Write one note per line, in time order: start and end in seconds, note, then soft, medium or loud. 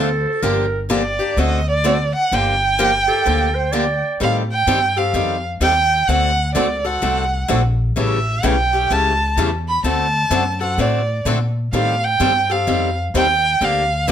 0.00 0.24 D2 medium
0.00 0.45 A4 medium
0.00 0.23 C5 medium
0.42 1.18 G1 medium
0.42 0.64 D3 medium
0.42 0.64 F3 medium
0.42 0.65 A#3 medium
0.42 0.65 D4 medium
0.42 0.65 G4 medium
0.42 0.82 A#4 medium
0.90 1.01 D3 medium
0.90 1.01 F3 medium
0.90 1.01 A#3 medium
0.90 1.02 D4 medium
0.90 1.02 G4 medium
0.90 1.40 D5 medium
1.19 1.37 A#3 soft
1.19 1.37 D4 medium
1.19 1.36 G4 medium
1.37 2.12 D2 medium
1.37 1.59 D3 medium
1.37 1.59 A3 medium
1.37 1.59 C4 medium
1.37 1.59 F#4 medium
1.37 1.59 A4 medium
1.37 1.68 D#5 medium
1.68 2.12 D5 medium
1.84 1.96 D3 medium
1.84 1.96 A3 medium
1.84 1.96 C4 medium
1.84 1.96 F#4 medium
1.84 1.96 A4 medium
2.16 2.36 F#5 medium
2.32 3.07 G1 medium
2.32 2.53 D3 medium
2.32 2.53 F3 medium
2.32 2.54 A#3 medium
2.32 2.54 D4 medium
2.32 2.54 G4 medium
2.32 4.04 G5 loud
2.79 2.90 D3 medium
2.79 2.90 F3 medium
2.79 2.90 A#3 medium
2.79 2.91 D4 medium
2.79 2.91 G4 loud
2.79 2.93 A#4 medium
3.07 3.25 A#3 soft
3.07 3.25 D4 soft
3.07 3.25 G4 soft
3.07 3.56 A4 medium
3.25 4.01 D2 medium
3.25 3.47 D3 medium
3.25 3.47 F3 medium
3.25 3.47 A#3 medium
3.25 3.47 D4 medium
3.25 3.48 G4 medium
3.55 3.73 C5 medium
3.72 3.84 D3 medium
3.72 3.84 F3 medium
3.72 3.84 A#3 medium
3.72 3.84 D4 medium
3.72 3.84 G4 medium
3.72 4.19 D5 medium
4.20 4.66 A2 medium
4.20 4.41 D#3 medium
4.20 4.42 G3 medium
4.20 4.42 C4 medium
4.20 4.42 G4 medium
4.20 4.42 A4 medium
4.20 4.36 F5 medium
4.52 4.99 G5 loud
4.67 5.12 G2 medium
4.67 4.78 D#3 medium
4.67 4.79 G3 medium
4.67 4.79 C4 medium
4.67 4.79 G4 loud
4.67 4.79 A4 medium
4.96 5.13 C4 soft
4.96 5.14 G4 soft
4.96 5.13 A4 medium
4.96 5.44 F5 medium
5.14 5.59 F2 medium
5.14 5.35 D#3 medium
5.14 5.35 G3 medium
5.14 5.36 C4 medium
5.14 5.36 G4 medium
5.14 5.36 A4 medium
5.60 6.06 D#2 medium
5.60 5.72 D#3 medium
5.60 5.72 G3 medium
5.60 5.73 C4 medium
5.60 5.72 G4 medium
5.60 5.73 A4 medium
5.60 6.09 G5 loud
6.08 6.54 D2 medium
6.08 6.30 D3 medium
6.08 6.30 A3 medium
6.08 6.30 C4 medium
6.08 6.30 F#4 medium
6.08 6.30 A4 medium
6.08 6.55 F#5 loud
6.55 7.01 C#2 medium
6.55 6.66 D3 medium
6.55 6.67 A3 medium
6.55 6.67 C4 medium
6.55 6.67 F#4 medium
6.55 6.67 A4 medium
6.55 6.87 D5 medium
6.85 7.01 C4 soft
6.85 7.01 F#4 soft
6.85 7.01 A4 medium
6.85 7.50 F#5 medium
7.02 7.48 C2 medium
7.02 7.23 D3 medium
7.02 7.23 A3 medium
7.02 7.24 C4 medium
7.02 7.24 F#4 medium
7.02 7.24 A4 medium
7.48 7.95 A#1 medium
7.48 7.60 D3 medium
7.48 7.60 A3 medium
7.48 7.60 C4 medium
7.48 7.61 F#4 medium
7.48 7.61 A4 medium
7.96 8.42 A1 medium
7.96 8.17 C#3 medium
7.96 8.18 E3 medium
7.96 8.18 G3 medium
7.96 8.18 A3 medium
7.96 8.18 C#4 medium
7.96 8.18 E4 medium
7.96 8.18 G4 medium
7.96 8.18 A4 medium
7.96 8.46 E5 medium
8.43 8.89 B1 medium
8.43 8.55 C#3 medium
8.43 8.55 E3 medium
8.43 8.55 G3 medium
8.43 8.55 A3 medium
8.43 8.55 C#4 medium
8.43 8.55 E4 medium
8.43 8.55 G4 medium
8.43 8.55 A4 medium
8.43 8.93 G5 medium
8.73 8.90 A3 soft
8.73 8.90 C#4 soft
8.73 8.90 G4 medium
8.90 9.36 C#2 medium
8.90 9.12 C#3 medium
8.90 9.12 E3 medium
8.90 9.12 G3 medium
8.90 9.12 A3 medium
8.90 9.12 C#4 medium
8.90 9.12 E4 medium
8.90 9.13 G4 medium
8.90 9.12 A4 medium
8.90 9.38 A5 medium
9.37 9.83 E2 medium
9.37 9.49 C#3 medium
9.37 9.49 E3 medium
9.37 9.49 G3 medium
9.37 9.49 A3 medium
9.37 9.49 C#4 medium
9.37 9.49 E4 medium
9.37 9.49 G4 medium
9.37 9.49 A4 medium
9.68 9.84 B5 medium
9.84 10.30 D2 medium
9.84 10.06 D3 medium
9.84 10.06 A3 medium
9.84 10.06 C4 medium
9.84 10.06 F#4 medium
9.84 10.06 A4 medium
9.84 10.58 A5 medium
10.30 10.77 F#2 medium
10.30 10.42 D3 medium
10.30 10.43 A3 medium
10.30 10.43 C4 medium
10.30 10.43 F#4 medium
10.30 10.43 A4 medium
10.61 10.78 C4 soft
10.61 10.78 F#4 soft
10.61 10.78 A4 medium
10.61 10.82 F#5 medium
10.78 11.24 A2 medium
10.78 11.00 D3 medium
10.78 11.00 A3 medium
10.78 11.00 C4 medium
10.78 11.00 F#4 medium
10.78 11.01 A4 medium
10.78 11.27 D5 medium
11.25 11.71 A#2 medium
11.25 11.37 D3 medium
11.25 11.37 A3 medium
11.25 11.38 C4 medium
11.25 11.38 F#4 medium
11.25 11.38 A4 medium
11.73 12.18 A2 medium
11.73 11.94 D#3 medium
11.73 11.94 G3 medium
11.73 11.95 C4 medium
11.73 11.95 G4 medium
11.73 11.95 A4 medium
11.73 12.06 F5 medium
12.04 12.53 G5 loud
12.20 12.65 G2 medium
12.20 12.31 D#3 medium
12.20 12.31 G3 medium
12.20 12.31 C4 medium
12.20 12.31 G4 medium
12.20 12.32 A4 medium
12.50 12.67 C4 soft
12.50 12.67 G4 medium
12.50 12.66 A4 medium
12.50 12.97 F5 medium
12.67 13.13 F2 medium
12.67 12.88 D#3 medium
12.67 12.88 G3 medium
12.67 12.89 C4 medium
12.67 12.89 G4 medium
12.67 12.89 A4 medium
13.14 13.60 D#2 medium
13.14 13.26 D#3 medium
13.14 13.26 G3 medium
13.14 13.26 C4 medium
13.14 13.26 G4 medium
13.14 13.26 A4 medium
13.14 13.65 G5 loud
13.61 14.06 D2 medium
13.61 13.82 D3 medium
13.61 13.82 F3 medium
13.61 13.83 A#3 medium
13.61 13.83 D4 medium
13.61 13.83 G4 medium
13.61 14.12 F5 medium
14.08 14.12 C2 medium
14.08 14.12 D3 medium
14.08 14.12 F3 medium
14.08 14.12 A#3 medium
14.08 14.12 D4 medium
14.08 14.12 G4 medium